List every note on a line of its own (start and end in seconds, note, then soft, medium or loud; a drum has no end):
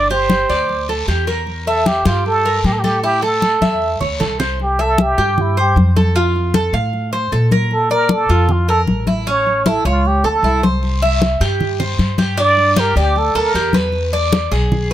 0.00 0.43 G1 medium
0.00 0.13 D5 loud
0.10 0.48 G4 medium
0.10 0.89 C5 medium
0.10 high conga soft
0.30 high conga medium
0.30 short guiro medium
0.49 1.04 D2 medium
0.49 0.87 D5 medium
0.49 short guiro medium
0.69 high conga soft
0.69 long guiro medium
0.88 1.08 A4 medium
0.88 high conga soft
1.07 2.00 E2 medium
1.07 1.27 G4 medium
1.07 high conga soft
1.07 short guiro medium
1.27 1.65 A#4 medium
1.27 high conga soft
1.27 short guiro medium
1.47 high conga soft
1.47 long guiro medium
1.67 1.88 A4 medium
1.67 2.05 E5 medium
1.67 high conga soft
1.86 2.06 G4 medium
1.86 high conga medium
1.86 short guiro medium
2.05 2.60 G2 medium
2.05 2.25 F4 medium
2.05 2.44 G4 medium
2.05 high conga medium
2.05 short guiro medium
2.26 2.67 A4 medium
2.26 high conga soft
2.26 long guiro medium
2.45 2.83 A#4 medium
2.45 high conga soft
2.64 3.56 A2 medium
2.64 2.74 G4 medium
2.64 high conga medium
2.64 short guiro medium
2.73 2.81 A4 medium
2.79 3.04 G4 medium
2.84 3.03 A4 medium
2.84 high conga medium
2.84 short guiro medium
3.04 3.22 E4 medium
3.04 3.26 G4 medium
3.04 high conga soft
3.04 long guiro medium
3.22 3.60 A4 medium
3.22 4.02 A4 medium
3.22 high conga soft
3.42 high conga medium
3.42 short guiro medium
3.61 3.98 E2 medium
3.61 4.00 E5 medium
3.61 high conga medium
3.61 short guiro medium
3.82 long guiro medium
4.01 4.19 D2 medium
4.01 4.20 C#5 medium
4.01 low conga medium
4.20 5.12 C2 medium
4.20 4.39 A4 medium
4.20 low conga medium
4.20 short guiro medium
4.40 4.59 C5 medium
4.40 low conga medium
4.40 short guiro medium
4.60 4.83 G4 medium
4.60 high conga soft
4.79 5.03 A4 medium
4.79 5.17 E5 medium
4.79 high conga soft
4.98 5.43 G4 medium
4.98 high conga loud
5.18 5.72 G2 medium
5.18 5.56 G4 medium
5.18 high conga soft
5.38 5.59 E4 medium
5.38 high conga soft
5.38 low conga medium
5.57 5.77 G4 medium
5.57 5.95 C5 medium
5.57 high conga soft
5.76 6.68 F2 medium
5.76 high conga medium
5.96 6.15 A4 medium
5.96 high conga medium
6.16 6.53 F4 medium
6.16 high conga soft
6.36 high conga soft
6.54 6.73 A4 medium
6.54 high conga medium
6.73 7.28 A2 medium
6.73 7.11 F5 medium
6.73 high conga soft
6.93 high conga soft
7.13 7.31 C5 medium
7.13 high conga soft
7.32 8.23 A#2 medium
7.32 7.51 A4 medium
7.32 high conga soft
7.51 7.90 A#4 medium
7.51 high conga medium
7.71 7.91 A4 medium
7.71 high conga soft
7.90 8.15 A#4 medium
7.90 8.28 D5 medium
7.90 high conga soft
8.09 8.54 A4 medium
8.09 high conga medium
8.29 8.84 F2 medium
8.29 8.67 F4 medium
8.29 high conga soft
8.49 8.69 F4 medium
8.49 high conga soft
8.49 low conga medium
8.68 8.81 A4 medium
8.68 9.06 A#4 medium
8.68 high conga soft
8.87 9.79 A1 medium
8.87 high conga medium
9.07 9.26 E4 medium
9.07 high conga medium
9.27 9.65 C#4 medium
9.27 9.69 C#5 medium
9.27 high conga soft
9.47 high conga soft
9.66 9.85 E4 medium
9.66 9.86 A4 medium
9.66 high conga medium
9.85 10.21 C#2 medium
9.85 10.09 F4 medium
9.85 10.23 C#5 medium
9.85 high conga soft
10.05 10.27 G4 medium
10.05 high conga soft
10.24 10.42 D2 medium
10.24 10.43 A4 medium
10.24 10.64 A4 medium
10.24 high conga soft
10.43 11.34 C2 medium
10.43 10.63 E4 medium
10.43 high conga soft
10.63 11.01 C5 medium
10.63 high conga medium
10.83 high conga soft
10.83 long guiro medium
11.02 11.40 E5 medium
11.02 high conga soft
11.22 high conga medium
11.22 short guiro medium
11.40 11.95 G2 medium
11.40 11.79 G4 medium
11.40 high conga soft
11.40 short guiro medium
11.60 high conga soft
11.60 low conga medium
11.60 long guiro medium
11.80 12.17 C5 medium
11.80 high conga soft
11.80 low conga medium
11.99 12.90 G2 medium
11.99 high conga medium
11.99 short guiro medium
12.18 12.37 G4 medium
12.18 high conga medium
12.18 short guiro medium
12.37 12.75 D4 medium
12.37 12.81 D5 loud
12.37 high conga soft
12.37 long guiro medium
12.57 high conga soft
12.76 12.96 G4 medium
12.76 12.98 A#4 medium
12.76 high conga medium
12.76 short guiro medium
12.96 13.32 D2 medium
12.96 13.20 G4 medium
12.96 13.34 D5 medium
12.96 high conga soft
12.96 short guiro medium
13.16 13.38 A4 medium
13.16 high conga soft
13.16 long guiro medium
13.35 13.53 D2 medium
13.35 13.54 A4 medium
13.35 13.74 A#4 medium
13.35 high conga soft
13.54 14.46 E2 medium
13.54 13.74 G4 medium
13.54 high conga soft
13.54 short guiro medium
13.73 14.12 B4 medium
13.73 high conga medium
13.73 short guiro medium
13.92 high conga soft
13.92 long guiro medium
14.13 14.51 D5 medium
14.13 high conga soft
14.32 high conga loud
14.32 short guiro medium
14.51 14.94 B1 medium
14.51 14.89 G#4 medium
14.51 high conga soft
14.51 short guiro medium
14.72 high conga soft
14.72 low conga medium
14.72 long guiro medium